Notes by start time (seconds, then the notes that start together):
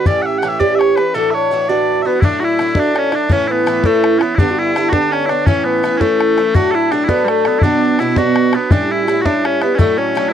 0.06 A2 E3 C#4 G4 D5, bodhran
0.22 E5 F#5
0.38 A2 F#5
0.43 E3 C#4 G4, bodhran
0.48 E5
0.59 A2 E3 C#4 G4 D5, bodhran
0.75 E5
0.79 C#5, bodhran
0.96 E3 C#4 G4 B4, bodhran
1.14 A2 E3 D4 F#4 A4
1.31 C#5 E5
1.36 C#5
1.51 A2 E3 D4 F#4
1.69 A2 E3 D4 F#4 D5
2.02 F#4 B4 E5
2.06 E3 B3 D4
2.21 A2 F#3 A3 D4 E4, bodhran
2.40 E4 F#4
2.44 E4
2.59 A2 F#3 A3 D4, bodhran
2.75 A2 F#3 A3 D4, bodhran
2.80 D4
2.95 C#4 C#5, bodhran
3.12 F#3 A3 D4, bodhran
3.29 A2 E3 C#4 E4 C#5, bodhran
3.43 C#5
3.48 E4 B4
3.52 B3
3.66 A2 E3 C#4 E4, bodhran
3.84 A2 E3 A3 C#4 E4 A4, bodhran
4.04 bodhran
4.19 B3 C#4 E4, bodhran
4.23 E3
4.36 G2 D3 D4 E4, bodhran
4.40 B3 D4
4.51 F#4
4.58 E4
4.76 G2 D3 B3 D4, bodhran
4.89 B3 D4 F#4, bodhran
4.93 G2 D3
5.12 C#4 C#5, bodhran
5.26 D4 E4, bodhran
5.31 D3 B3
5.46 A2 E3 C#4 E4 C#5, bodhran
5.65 B3 B4
5.83 A2 E3 C#4 E4, bodhran
5.98 A3 C#4 E4 A4, bodhran
6.02 A2 E3
6.21 bodhran
6.37 E3 C#4 E4, bodhran
6.54 A2 F#3 A3 D4 F#4, bodhran
6.71 E4 A4
6.92 A2 F#3 A3 D4, bodhran
7.05 E4
7.09 A2 F#3 A3 B3 D4 B4, bodhran
7.25 G3 A3, bodhran
7.30 A4
7.45 F#3 A3 B3 D4, bodhran
7.59 B2 D4 E4, bodhran
7.63 F#3 B3 D4
7.99 B2 F#3 B3 D4 E4, bodhran
8.16 B2 F#3 B3 D4 F#4, bodhran
8.36 bodhran
8.53 F#3 B3 D4, bodhran
8.70 A2 G3 C#4 D4 E4, bodhran
8.91 E4
9.05 A2 G3 E4 F#4, bodhran
9.09 C#4 E4
9.21 E4 F#4
9.26 A2 G3 C#4 D4, bodhran
9.45 C#4 C#5, bodhran
9.61 G3 B3 C#4 E4 B4, bodhran
9.75 A2 F#3 A3 C#4 A4, bodhran
9.80 D4 E4
9.98 C#4 C#5
10.15 A2 F#3 D4 E4, bodhran
10.29 E4